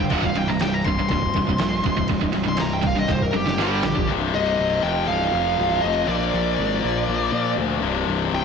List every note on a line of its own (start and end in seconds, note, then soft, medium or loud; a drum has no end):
0.00 0.10 G2 medium
0.00 0.10 D3 medium
0.00 0.12 G5 loud
0.10 0.32 C1 medium
0.10 0.21 C2 medium
0.10 0.22 G2 loud
0.10 0.22 C3 loud
0.10 0.25 F#5 loud
0.10 kick loud
0.10 crash medium
0.23 0.36 C2 medium
0.23 0.35 G2 medium
0.23 0.37 F5 medium
0.23 kick medium
0.34 0.56 C1 medium
0.34 0.47 C2 medium
0.34 0.47 G2 medium
0.34 0.49 G5 loud
0.34 crash medium
0.48 0.60 C2 medium
0.48 0.60 G2 medium
0.48 0.61 A#5 loud
0.60 1.04 C1 loud
0.60 0.84 C2 medium
0.60 0.84 G2 medium
0.60 0.74 G5 loud
0.60 snare loud
0.60 crash medium
0.74 0.85 A#5 medium
0.84 0.98 C2 medium
0.84 0.98 G2 medium
0.84 1.08 C6 medium
0.84 kick medium
0.84 crash medium
0.99 1.10 C2 medium
0.99 1.10 G2 medium
1.09 1.32 C1 loud
1.09 1.33 C2 medium
1.09 1.34 G2 loud
1.09 2.07 C6 loud
1.09 kick loud
1.09 crash medium
1.22 kick medium
1.34 1.56 C1 medium
1.34 1.46 C2 medium
1.34 1.45 G2 medium
1.34 kick medium
1.34 crash medium
1.47 1.57 C2 medium
1.47 1.58 G2 medium
1.47 kick loud
1.58 1.82 A#1 loud
1.58 1.82 C2 medium
1.58 1.82 G2 medium
1.58 snare loud
1.58 crash medium
1.83 2.06 C1 medium
1.83 1.96 C2 medium
1.83 1.96 G2 medium
1.83 kick medium
1.83 crash medium
1.97 2.09 C2 medium
1.97 2.09 G2 medium
1.97 kick medium
2.08 2.31 C1 medium
2.08 2.22 C2 medium
2.08 2.22 G2 loud
2.08 kick loud
2.08 crash medium
2.21 2.34 C2 medium
2.21 2.33 G2 medium
2.21 kick medium
2.33 2.57 C1 medium
2.33 2.45 C2 medium
2.33 2.45 G2 medium
2.33 crash medium
2.46 2.59 C2 medium
2.46 2.59 G2 medium
2.46 2.60 C6 loud
2.57 3.03 C1 loud
2.57 2.82 C2 medium
2.57 2.82 G2 medium
2.57 snare loud
2.57 crash medium
2.61 2.73 A#5 loud
2.73 2.85 G5 medium
2.83 2.95 C2 medium
2.83 2.94 G2 medium
2.83 2.98 F5 loud
2.83 kick loud
2.83 crash medium
2.96 3.07 C2 medium
2.96 3.07 G2 medium
2.96 3.11 D#5 medium
3.08 3.30 C1 loud
3.08 3.32 C2 medium
3.08 3.31 G2 medium
3.08 3.22 C5 loud
3.08 kick loud
3.08 snare medium
3.21 3.35 A#4 loud
3.21 kick medium
3.33 3.58 F#1 medium
3.33 3.46 C2 medium
3.33 3.46 G2 medium
3.33 3.60 G4 loud
3.47 3.58 C2 medium
3.47 3.58 G2 medium
3.47 snare medium
3.58 3.80 G1 loud
3.58 3.83 G2 loud
3.58 3.82 D3 loud
3.58 3.83 G3 loud
3.58 snare medium
3.63 4.10 G4 loud
3.83 4.05 A#1 medium
3.83 3.94 G2 medium
3.83 3.94 D3 medium
3.83 snare loud
3.95 4.07 G2 medium
3.95 4.08 D3 medium
3.95 kick loud
4.07 4.31 C1 medium
4.07 4.82 C2 loud
4.07 4.82 G2 medium
4.07 4.82 C3 loud
4.34 4.56 C1 medium
4.34 4.86 D#5 loud
4.58 4.81 C1 loud
4.82 5.05 F1 loud
4.82 6.06 F2 medium
4.82 6.07 C3 medium
4.82 6.06 F3 loud
4.82 5.07 G5 loud
5.08 5.30 C1 loud
5.08 5.85 F5 loud
5.33 5.55 F1 medium
5.58 5.80 C1 loud
5.82 6.06 F1 medium
5.82 6.07 D#5 medium
6.06 6.30 A#1 medium
6.06 7.80 A#2 medium
6.06 7.80 F3 loud
6.06 7.81 A#3 loud
6.06 7.53 D5 medium
6.34 6.56 A#1 medium
6.59 6.80 G#1 loud
6.84 7.06 A#1 medium
7.08 7.30 A#1 loud
7.32 7.54 A#2 medium
7.57 7.79 D2 loud
7.81 8.04 C1 medium
7.81 8.45 C2 medium
7.81 8.45 G2 medium
7.81 8.45 C3 loud
8.07 8.29 C1 loud
8.31 8.45 C1 medium
8.31 8.45 G5 loud